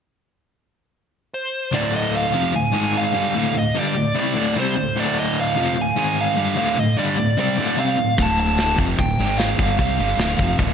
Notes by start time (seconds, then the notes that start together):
1.34 C5
1.72 D2 A2 D3 D5
1.96 D#5
2.17 F5
2.33 F2 C3 F3
2.53 D2 A2 G#5
2.72 G#2 D#3 G#3
2.97 F5
3.13 G2 D3 G3
3.35 D2 A2 D3 F5
3.53 D2 A2
3.58 D#5
3.75 G2 D3 G3
3.79 D5
3.95 D2 A2
4.15 C3 G3 C4
4.20 D5
4.36 D2 A2 D3
4.56 C3 G3 C4 C5
4.77 D2 A2
4.97 D2 A2 D3 D5
5.19 D#5
5.41 F5
5.56 F2 C3 F3
5.77 D2 A2
5.81 G#5
5.96 G#2 D#3 G#3
6.21 F5
6.36 G2 D3 G3
6.56 D2 A2 D3 F5
6.77 D2 A2 D#5
6.98 G2 D3 G3 D5
7.18 D2 A2
7.38 C3 G3 C4 D5
7.58 D2 A2 D3
7.77 C3 G3 C4 F5
7.97 D2 A2
8.18 D1 D2 A2 D3, kick, open hi-hat
8.22 A5
8.38 A5, open hi-hat
8.58 snare, open hi-hat
8.78 F1 F2 C3 F3, kick, open hi-hat
8.99 D1 D2 A2 G5, kick, open hi-hat
9.19 G#1 G#2 D#3 G#3, open hi-hat
9.38 F5, snare, open hi-hat
9.59 G1 G2 D3 G3, kick, open hi-hat
9.78 C2 C3 G3 C4 F5, kick, open hi-hat
9.99 G1 G2 D3 G3, open hi-hat
10.18 D1 D2 A2 D3, snare, open hi-hat
10.39 F1 F2 C3 F3, kick, open hi-hat
10.58 D1 D2 A2 D3, kick, open hi-hat